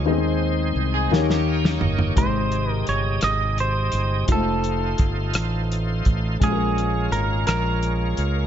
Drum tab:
HH |------------|x-x-x-x-x-x-|x-x-x-x-x-x-|x-x-x-x-x-x-|
SD |------oo-o--|------r-----|------r-----|------r-----|
FT |----------oo|------------|------------|------------|
BD |------------|o-----------|o---o-----o-|o-----------|